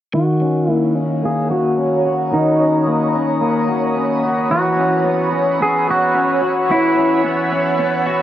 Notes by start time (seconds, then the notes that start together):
0.13 D#3 F#4 C#5 A#5 B5 D#6
0.41 C#4
0.68 A#3 E4
0.95 C#4
1.23 A#3 G#4
1.50 F#4
1.77 C#4
2.05 F#4
2.32 D#3 D#4
2.59 C#4
2.87 A#3
3.14 C#4
3.41 A#3
3.68 F#4
3.96 C#4
4.24 F#4
4.49 E3 F#4 C#5 F#5 E6
4.77 C#4
5.04 B3
5.32 C#4
5.61 B3 G#4
5.88 F#4
6.15 C#4
6.42 F#4
6.69 E3 E4
6.96 C#4
7.24 B3
7.52 C#4
7.79 B3
8.07 F#4